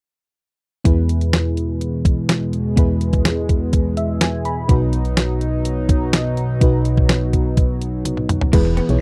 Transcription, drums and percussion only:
0.85 kick loud
0.85 closed hi-hat medium
1.09 closed hi-hat medium
1.21 closed hi-hat soft
1.33 snare loud
1.33 closed hi-hat medium
1.57 closed hi-hat medium
1.81 closed hi-hat medium
2.05 kick medium
2.05 closed hi-hat medium
2.29 snare loud
2.29 closed hi-hat medium
2.53 closed hi-hat medium
2.77 kick loud
2.77 closed hi-hat medium
3.01 closed hi-hat medium
3.13 kick medium
3.13 closed hi-hat soft
3.25 snare loud
3.25 closed hi-hat medium
3.49 kick medium
3.49 closed hi-hat medium
3.73 kick medium
3.73 closed hi-hat medium
3.97 closed hi-hat medium
4.21 snare loud
4.21 closed hi-hat medium
4.45 closed hi-hat medium
4.69 kick loud
4.69 closed hi-hat medium
4.93 closed hi-hat medium
5.05 closed hi-hat soft
5.17 snare loud
5.17 closed hi-hat medium
5.41 closed hi-hat medium
5.65 closed hi-hat medium
5.89 kick medium
5.89 closed hi-hat medium
6.13 snare loud
6.13 closed hi-hat medium
6.37 closed hi-hat medium
6.61 kick loud
6.61 closed hi-hat medium
6.85 closed hi-hat medium
6.97 kick medium
7.09 snare loud
7.09 closed hi-hat medium
7.33 kick medium
7.33 closed hi-hat medium
7.57 kick medium
7.57 closed hi-hat medium
7.82 closed hi-hat medium
8.05 closed hi-hat medium
8.05 high tom soft
8.17 mid tom soft
8.29 closed hi-hat medium
8.29 mid tom medium
8.41 floor tom medium
8.53 kick loud
8.53 closed hi-hat medium
8.53 crash medium
8.77 closed hi-hat medium
8.89 closed hi-hat soft

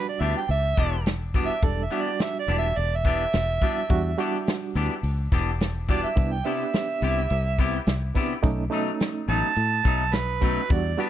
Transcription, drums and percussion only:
0.21 open hi-hat medium
0.50 open hi-hat medium
0.77 kick medium
0.77 open hi-hat medium
1.06 snare loud
1.06 open hi-hat medium
1.34 kick medium
1.34 open hi-hat soft
1.62 kick loud
1.62 open hi-hat medium
1.92 open hi-hat soft
2.19 snare loud
2.19 open hi-hat medium
2.49 open hi-hat medium
2.77 open hi-hat medium
3.05 kick medium
3.05 open hi-hat soft
3.33 snare loud
3.33 open hi-hat medium
3.61 kick medium
3.61 open hi-hat medium
3.90 kick loud
3.90 open hi-hat medium
4.19 open hi-hat medium
4.47 snare loud
4.47 open hi-hat medium
4.76 open hi-hat soft
5.04 open hi-hat medium
5.32 kick medium
5.32 open hi-hat medium
5.60 snare loud
5.60 open hi-hat medium
5.88 kick medium
5.88 open hi-hat medium
6.17 kick loud
6.17 open hi-hat medium
6.45 open hi-hat medium
6.73 snare loud
6.73 open hi-hat medium
7.02 open hi-hat soft
7.30 open hi-hat medium
7.58 kick medium
7.58 open hi-hat medium
7.87 snare loud
7.87 open hi-hat medium
8.15 kick medium
8.15 open hi-hat medium
8.43 kick loud
8.43 open hi-hat medium
8.72 open hi-hat medium
9.00 snare loud
9.00 open hi-hat medium
9.28 open hi-hat soft
9.56 open hi-hat medium
9.85 kick medium
9.85 open hi-hat soft
10.13 snare loud
10.13 open hi-hat medium
10.42 kick medium
10.42 open hi-hat medium
10.70 kick loud
10.70 open hi-hat medium
10.99 open hi-hat medium

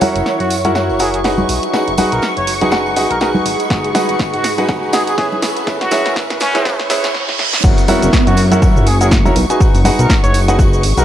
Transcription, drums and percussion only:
0.01 open hi-hat medium
0.01 tambourine medium
0.01 high conga medium
0.16 closed hi-hat medium
0.16 tambourine soft
0.26 snare soft
0.26 tambourine soft
0.40 closed hi-hat medium
0.40 tambourine soft
0.50 open hi-hat loud
0.50 tambourine medium
0.64 closed hi-hat medium
0.64 tambourine soft
0.64 high conga medium
0.75 snare soft
0.75 tambourine medium
0.89 tambourine soft
0.99 open hi-hat loud
0.99 tambourine medium
1.14 closed hi-hat medium
1.14 tambourine soft
1.24 snare medium
1.24 open hi-hat medium
1.24 tambourine soft
1.38 tambourine soft
1.38 high conga medium
1.49 open hi-hat loud
1.49 tambourine medium
1.63 closed hi-hat medium
1.63 tambourine soft
1.74 snare medium
1.74 tambourine medium
1.88 closed hi-hat soft
1.88 tambourine soft
1.98 open hi-hat loud
1.98 tambourine loud
1.98 high conga medium
2.12 closed hi-hat medium
2.12 tambourine soft
2.22 snare medium
2.22 tambourine medium
2.37 closed hi-hat medium
2.37 tambourine soft
2.47 open hi-hat loud
2.47 tambourine medium
2.61 closed hi-hat medium
2.61 tambourine soft
2.61 high conga medium
2.71 snare medium
2.71 tambourine medium
2.86 tambourine soft
2.96 open hi-hat loud
2.96 tambourine medium
3.10 closed hi-hat medium
3.10 tambourine soft
3.21 snare medium
3.21 tambourine medium
3.35 tambourine soft
3.35 high conga loud
3.46 open hi-hat loud
3.46 tambourine medium
3.60 closed hi-hat medium
3.60 tambourine soft
3.70 kick loud
3.70 snare medium
3.70 tambourine medium
3.84 closed hi-hat soft
3.84 tambourine soft
3.95 snare medium
3.95 open hi-hat loud
3.95 tambourine medium
3.95 high conga medium
4.09 closed hi-hat medium
4.09 tambourine soft
4.19 kick loud
4.19 snare medium
4.19 tambourine medium
4.34 closed hi-hat soft
4.34 tambourine soft
4.44 snare medium
4.44 open hi-hat loud
4.44 tambourine medium
4.58 closed hi-hat medium
4.58 tambourine soft
4.58 high conga medium
4.69 kick loud
4.69 snare medium
4.69 tambourine medium
4.83 tambourine soft
4.93 snare medium
4.93 open hi-hat loud
4.93 tambourine loud
5.07 closed hi-hat medium
5.07 tambourine soft
5.18 kick loud
5.18 snare medium
5.18 open hi-hat medium
5.18 tambourine medium
5.32 tambourine soft
5.32 high conga loud
5.42 snare medium
5.42 open hi-hat loud
5.42 tambourine medium
5.56 closed hi-hat medium
5.56 tambourine soft
5.67 kick loud
5.67 snare medium
5.67 tambourine medium
5.81 snare medium
5.81 closed hi-hat soft
5.81 tambourine soft
5.91 snare medium
5.91 open hi-hat loud
5.91 tambourine loud
5.91 high conga medium
6.05 snare medium
6.05 closed hi-hat medium
6.05 tambourine soft
6.16 kick loud
6.16 snare medium
6.16 tambourine medium
6.30 snare medium
6.30 closed hi-hat soft
6.30 tambourine soft
6.40 snare loud
6.40 open hi-hat loud
6.40 tambourine loud
6.55 snare medium
6.55 closed hi-hat medium
6.55 tambourine soft
6.55 high conga medium
6.65 kick loud
6.65 snare loud
6.65 tambourine medium
6.79 snare medium
6.79 tambourine soft
6.90 snare loud
6.90 open hi-hat loud
6.90 tambourine medium
7.04 snare medium
7.04 closed hi-hat medium
7.04 tambourine soft
7.14 snare medium
7.29 snare medium
7.39 snare medium
7.53 snare medium
7.64 kick loud
7.64 crash loud
7.64 tambourine medium
7.64 shaker medium
7.78 closed hi-hat medium
7.78 tambourine soft
7.78 shaker soft
7.88 open hi-hat loud
7.88 tambourine medium
7.88 high conga loud
8.02 closed hi-hat medium
8.02 tambourine soft
8.02 shaker medium
8.13 kick loud
8.13 snare loud
8.13 tambourine medium
8.13 shaker medium
8.27 closed hi-hat medium
8.27 tambourine soft
8.27 shaker soft
8.37 open hi-hat loud
8.37 tambourine loud
8.51 closed hi-hat medium
8.51 tambourine soft
8.51 high conga medium
8.51 shaker medium
8.62 kick loud
8.62 tambourine medium
8.62 shaker medium
8.76 tambourine soft
8.76 shaker soft
8.87 open hi-hat loud
8.87 tambourine medium
9.01 closed hi-hat medium
9.01 tambourine soft
9.01 shaker medium
9.11 kick loud
9.11 snare loud
9.11 tambourine soft
9.11 shaker medium
9.25 tambourine soft
9.25 high conga medium
9.25 shaker soft
9.36 open hi-hat loud
9.36 tambourine medium
9.50 closed hi-hat medium
9.50 tambourine soft
9.50 shaker medium
9.60 kick loud
9.60 tambourine medium
9.60 shaker medium
9.74 open hi-hat medium
9.74 tambourine soft
9.74 shaker soft
9.84 open hi-hat loud
9.84 tambourine loud
9.84 high conga medium
9.99 closed hi-hat medium
9.99 tambourine soft
9.99 shaker medium
10.10 kick loud
10.10 snare loud
10.10 tambourine medium
10.10 shaker medium
10.24 closed hi-hat medium
10.24 tambourine soft
10.24 shaker soft
10.34 open hi-hat loud
10.34 tambourine medium
10.48 closed hi-hat medium
10.48 tambourine soft
10.48 high conga medium
10.48 shaker medium
10.59 kick loud
10.59 tambourine medium
10.59 shaker medium
10.73 tambourine soft
10.73 shaker soft
10.83 open hi-hat loud
10.83 tambourine medium
10.97 closed hi-hat medium
10.97 tambourine soft
10.97 shaker medium

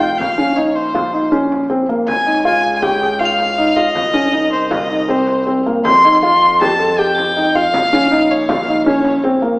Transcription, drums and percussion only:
0.01 frame drum soft
0.20 frame drum medium
0.77 frame drum soft
0.95 frame drum medium
1.33 frame drum soft
1.52 frame drum soft
1.71 frame drum soft
1.89 frame drum soft
2.08 frame drum medium
2.64 frame drum soft
2.82 frame drum medium
3.20 frame drum soft
3.39 frame drum soft
3.58 frame drum soft
3.76 frame drum soft
3.95 frame drum medium
4.71 frame drum medium
5.09 frame drum soft
5.27 frame drum soft
5.85 frame drum medium
6.42 frame drum soft
6.61 frame drum medium
6.99 frame drum soft
7.18 frame drum soft
7.37 frame drum soft
7.55 frame drum soft
7.74 frame drum medium
8.30 frame drum soft
8.49 frame drum medium
8.86 frame drum soft
9.05 frame drum soft
9.24 frame drum soft
9.43 frame drum soft

